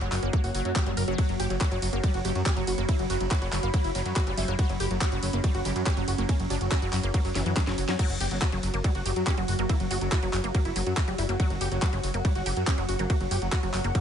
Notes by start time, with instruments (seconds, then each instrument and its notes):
Already playing: ambient pad F#3 A#3 F#4 C#5 F#5
0.01 analog synth bass F#1, supersaw synth F#3, synth arpeggio sound F#3, closed hi-hat
0.12 analog synth bass F#1, supersaw synth F#3, clap, open hi-hat
0.23 analog synth bass F#1, synth arpeggio sound A#3, closed hi-hat
0.33 supersaw synth F#3, synth arpeggio sound A#3, kick, closed hi-hat
0.44 analog synth bass F#1, supersaw synth F#4, open hi-hat
0.55 analog synth bass F#1, supersaw synth F#3, synth arpeggio sound F#3, open hi-hat
0.65 analog synth bass F#2, supersaw synth F#3, closed hi-hat
0.76 synth arpeggio sound F#3, supersaw synth G4, kick, clap, closed hi-hat
0.86 analog synth bass F#1, supersaw synth F#3, synth arpeggio sound G3, closed hi-hat
0.97 analog synth bass F#1, supersaw synth A#4, open hi-hat
1.08 analog synth bass F#1, supersaw synth F#3, synth arpeggio sound F#3, closed hi-hat
1.18 synth arpeggio sound F#3, supersaw synth F#4, ambient pad F#4, kick, closed hi-hat, ride
1.29 analog synth bass F#1, supersaw synth F#3, closed hi-hat
1.40 analog synth bass F#1, supersaw synth G4, synth arpeggio sound G4, open hi-hat
1.50 analog synth bass F#1, supersaw synth F#3, closed hi-hat
1.61 synth arpeggio sound F#3, supersaw synth F#4, kick, clap, closed hi-hat, ride
1.72 analog synth bass F#1, synth arpeggio sound F#3, supersaw synth F#3, closed hi-hat
1.82 analog synth bass F#1, supersaw synth F#3, open hi-hat
1.93 analog synth bass F#1, synth arpeggio sound A#3, ambient pad B5, closed hi-hat
2.04 supersaw synth F#3, synth arpeggio sound G3, kick, closed hi-hat, ride
2.14 analog synth bass F#1, supersaw synth F#4, closed hi-hat
2.25 analog synth bass F#1, supersaw synth F#3, synth arpeggio sound G4, open hi-hat
2.35 analog synth bass F#2, supersaw synth F#3, closed hi-hat
2.46 synth arpeggio sound C#4, supersaw synth G4, kick, clap, closed hi-hat, ride
2.57 analog synth bass F#1, synth arpeggio sound F#3, supersaw synth F#3, closed hi-hat
2.67 analog synth bass F#1, supersaw synth F#4, open hi-hat
2.78 analog synth bass F#1, supersaw synth F#3, synth arpeggio sound A#3, closed hi-hat
2.89 synth arpeggio sound A#3, supersaw synth E4, kick, closed hi-hat, ride
2.99 analog synth bass F#1, supersaw synth F#3, closed hi-hat
3.10 analog synth bass F#1, synth arpeggio sound F#3, supersaw synth F#4, open hi-hat
3.21 analog synth bass F#1, supersaw synth F#3, closed hi-hat
3.31 supersaw synth E4, synth arpeggio sound F#4, kick, clap, closed hi-hat, ride
3.42 analog synth bass F#1, synth arpeggio sound F#3, supersaw synth F#3, closed hi-hat
3.52 analog synth bass F#1, supersaw synth F#3, clap, open hi-hat
3.63 analog synth bass F#1, synth arpeggio sound A#3, closed hi-hat
3.74 supersaw synth F#3, synth arpeggio sound A#3, kick, closed hi-hat, ride
3.84 analog synth bass F#1, supersaw synth E4, open hi-hat
3.95 analog synth bass F#1, synth arpeggio sound F#3, supersaw synth F#3, open hi-hat
4.06 analog synth bass F#2, supersaw synth F#3, closed hi-hat
4.16 supersaw synth F#4, synth arpeggio sound F#4, kick, clap, closed hi-hat, ride
4.27 analog synth bass F#1, supersaw synth F#3, synth arpeggio sound G3, closed hi-hat
4.38 analog synth bass F#1, synth arpeggio sound G3, supersaw synth E4, open hi-hat
4.48 analog synth bass F#1, supersaw synth F#3, synth arpeggio sound A#3, closed hi-hat
4.59 synth arpeggio sound F#3, ambient pad C#4, supersaw synth F#4, kick, closed hi-hat, ride
4.69 analog synth bass F#1, supersaw synth F#3, closed hi-hat
4.80 analog synth bass F#1, supersaw synth G4, synth arpeggio sound G4, open hi-hat
4.91 analog synth bass F#1, supersaw synth F#3, closed hi-hat
5.01 synth arpeggio sound F#3, supersaw synth F#4, kick, clap, closed hi-hat, ride
5.12 analog synth bass F#1, supersaw synth F#3, synth arpeggio sound F#3, closed hi-hat
5.23 analog synth bass F#1, supersaw synth F#3, open hi-hat
5.33 analog synth bass F#1, synth arpeggio sound A#3, closed hi-hat
5.44 supersaw synth F#3, synth arpeggio sound G3, kick, closed hi-hat, ride
5.55 analog synth bass F#1, supersaw synth F#4, closed hi-hat
5.65 analog synth bass F#1, supersaw synth F#3, synth arpeggio sound G4, open hi-hat
5.76 analog synth bass F#2, supersaw synth F#3, closed hi-hat
5.86 synth arpeggio sound C#4, supersaw synth G4, kick, clap, closed hi-hat, ride
5.97 analog synth bass F#1, supersaw synth F#3, synth arpeggio sound F#3, closed hi-hat
6.08 analog synth bass F#1, supersaw synth F#4, open hi-hat
6.18 analog synth bass F#1, supersaw synth F#3, synth arpeggio sound A#3, closed hi-hat
6.29 synth arpeggio sound A#3, supersaw synth C#4, kick, closed hi-hat, ride
6.40 analog synth bass F#1, supersaw synth F#3, closed hi-hat
6.50 analog synth bass F#1, synth arpeggio sound F#3, supersaw synth D4, open hi-hat
6.61 analog synth bass F#1, supersaw synth F#3, closed hi-hat
6.72 supersaw synth C#4, synth arpeggio sound F#4, kick, clap, closed hi-hat, ride
6.82 analog synth bass F#1, supersaw synth F#3, synth arpeggio sound F#3, closed hi-hat
6.93 analog synth bass F#1, supersaw synth F#3, clap, open hi-hat
7.03 analog synth bass F#1, synth arpeggio sound A#3, closed hi-hat
7.14 supersaw synth F#3, synth arpeggio sound A#3, kick, closed hi-hat, ride
7.25 analog synth bass F#1, supersaw synth F#3, open hi-hat
7.35 analog synth bass F#1, synth arpeggio sound E3, supersaw synth F#3, snare, open hi-hat
7.46 analog synth bass F#2, synth arpeggio sound E3, supersaw synth F#3, closed hi-hat
7.57 supersaw synth F#3, synth arpeggio sound F#3, kick, snare, clap, closed hi-hat, ride
7.67 analog synth bass F#1, supersaw synth F#3, synth arpeggio sound F#3, snare, closed hi-hat
7.78 analog synth bass F#1, supersaw synth F#3, open hi-hat
7.89 analog synth bass F#2, supersaw synth F#3, synth arpeggio sound C#4, snare, closed hi-hat
7.99 ambient pad F#3 F#4, synth arpeggio sound F#3, supersaw synth F#4, kick, closed hi-hat, crash, ride
8.10 analog synth bass F#1, supersaw synth F#3, closed hi-hat
8.20 analog synth bass F#1, wobble bass A#3, supersaw synth G4, synth arpeggio sound G4, open hi-hat
8.26 ambient pad F#5
8.31 analog synth bass F#1, supersaw synth F#3, wobble bass A#3, closed hi-hat
8.42 synth arpeggio sound F#3, supersaw synth F#4, kick, clap, closed hi-hat, ride
8.49 analog synth bass F#1, supersaw synth F#3, synth arpeggio sound F#3, ambient pad C#5, closed hi-hat
8.63 analog synth bass F#1, supersaw synth F#3, open hi-hat
8.74 analog synth bass F#1, wobble bass F#3, synth arpeggio sound A#3, closed hi-hat
8.84 wobble bass F#3, supersaw synth F#3, synth arpeggio sound G3, kick, closed hi-hat, ride
8.95 analog synth bass F#1, supersaw synth F#4, closed hi-hat
9.06 analog synth bass F#1, supersaw synth F#3, synth arpeggio sound G4, open hi-hat
9.16 analog synth bass F#2, supersaw synth F#3, closed hi-hat
9.27 synth arpeggio sound C#4, supersaw synth G4, kick, clap, closed hi-hat, ride
9.38 analog synth bass F#1, supersaw synth F#3, synth arpeggio sound F#3, closed hi-hat
9.48 analog synth bass F#1, supersaw synth F#4, open hi-hat
9.59 analog synth bass F#1, supersaw synth F#3, synth arpeggio sound A#3, closed hi-hat
9.69 synth arpeggio sound A#3, supersaw synth E4, kick, closed hi-hat, ride
9.80 analog synth bass F#1, supersaw synth F#3, closed hi-hat
9.91 analog synth bass F#1, wobble bass F#3, synth arpeggio sound F#3, supersaw synth F#4, open hi-hat
10.01 analog synth bass F#1, supersaw synth F#3, closed hi-hat
10.12 supersaw synth E4, synth arpeggio sound F#4, kick, clap, closed hi-hat, ride
10.23 analog synth bass F#1, supersaw synth F#3, synth arpeggio sound F#3, closed hi-hat
10.33 analog synth bass F#1, supersaw synth F#3, clap, open hi-hat
10.44 analog synth bass F#1, synth arpeggio sound A#3, closed hi-hat
10.55 supersaw synth F#3, synth arpeggio sound A#3, kick, closed hi-hat, ride
10.65 analog synth bass F#1, supersaw synth E4, closed hi-hat
10.76 analog synth bass F#1, supersaw synth F#3, synth arpeggio sound F#3, open hi-hat
10.86 analog synth bass F#2, supersaw synth F#3, closed hi-hat
10.97 supersaw synth F#4, synth arpeggio sound F#4, kick, clap, closed hi-hat, ride
11.08 analog synth bass F#1, supersaw synth F#3, synth arpeggio sound G3, closed hi-hat
11.18 analog synth bass F#1, synth arpeggio sound G3, supersaw synth E4, open hi-hat
11.29 analog synth bass F#1, supersaw synth F#3, synth arpeggio sound A#3, closed hi-hat
11.40 synth arpeggio sound F#3, supersaw synth F#4, kick, closed hi-hat, ride
11.50 analog synth bass F#1, supersaw synth F#3, closed hi-hat
11.61 analog synth bass F#1, synth arpeggio sound G4, supersaw synth G4, open hi-hat
11.72 analog synth bass F#1, supersaw synth F#3, closed hi-hat
11.82 synth arpeggio sound F#3, supersaw synth F#4, kick, clap, closed hi-hat, ride
11.93 analog synth bass F#1, synth arpeggio sound F#3, supersaw synth F#3, closed hi-hat
12.04 analog synth bass F#1, supersaw synth F#3, open hi-hat
12.14 analog synth bass F#1, synth arpeggio sound A#3, closed hi-hat
12.25 supersaw synth F#3, synth arpeggio sound G3, kick, closed hi-hat, ride
12.35 analog synth bass F#1, supersaw synth F#4, closed hi-hat
12.46 analog synth bass F#1, supersaw synth F#3, synth arpeggio sound G4, open hi-hat
12.57 analog synth bass F#2, supersaw synth F#3, closed hi-hat
12.67 synth arpeggio sound C#4, supersaw synth G4, kick, clap, closed hi-hat, ride
12.78 analog synth bass F#1, synth arpeggio sound F#3, supersaw synth F#3, closed hi-hat
12.89 analog synth bass F#1, supersaw synth F#4, open hi-hat
12.99 analog synth bass F#1, supersaw synth F#3, synth arpeggio sound A#3, closed hi-hat
13.10 synth arpeggio sound A#3, supersaw synth F#4, kick, closed hi-hat, ride
13.21 analog synth bass F#1, supersaw synth F#3, closed hi-hat
13.31 analog synth bass F#1, synth arpeggio sound F#3, supersaw synth G4, open hi-hat
13.42 analog synth bass F#1, supersaw synth F#3, closed hi-hat
13.52 synth arpeggio sound F#4, supersaw synth F#4, kick, clap, closed hi-hat, ride
13.63 analog synth bass F#1, synth arpeggio sound F#3, supersaw synth F#3, closed hi-hat
13.74 analog synth bass F#1, supersaw synth F#3, clap, open hi-hat
13.84 analog synth bass F#1, synth arpeggio sound A#3, closed hi-hat
13.95 supersaw synth F#3, synth arpeggio sound A#3, kick, closed hi-hat, ride